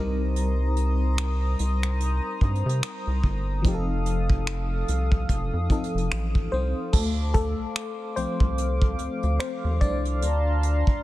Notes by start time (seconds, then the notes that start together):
Already playing: C2 G3 C4 D#4 C5 A#5 D#6
0.00 A#4
0.36 closed hi-hat
0.76 closed hi-hat
1.18 finger snap, closed hi-hat
1.59 C2, closed hi-hat
1.83 finger snap
2.00 closed hi-hat
2.41 G2, kick, closed hi-hat
2.55 closed hi-hat
2.66 C3, closed hi-hat
2.83 finger snap, closed hi-hat
3.07 C2
3.24 G1, kick
3.62 F1 F3 C4 D#4 A4 F5 D#6, kick, closed hi-hat
3.68 G4
3.74 A4
4.06 closed hi-hat
4.30 kick
4.47 finger snap, closed hi-hat
4.88 C2, closed hi-hat
5.12 kick
5.29 F1, kick, closed hi-hat
5.53 F2
5.69 F3 C4 D#4 A4, kick, closed hi-hat
5.84 closed hi-hat
5.95 F1, closed hi-hat
6.11 A1, finger snap, closed hi-hat
6.35 kick
6.52 C2 C4 C5
6.93 D2 A3 A4 C5 F5 D6, kick, crash
7.34 A3 A4, kick, closed hi-hat
7.59 C2
7.75 finger snap, closed hi-hat
8.16 C2 F3 A3 C4 C5, closed hi-hat
8.40 C2, kick
8.58 closed hi-hat
8.82 kick
8.99 D2, closed hi-hat
9.23 D2, closed hi-hat
9.40 C4 C5, finger snap, closed hi-hat
9.64 D#2
9.81 C2 D4 D5, kick, closed hi-hat
10.05 closed hi-hat
10.22 D2 A5 A#5 C6, closed hi-hat
10.63 closed hi-hat
10.87 C2, kick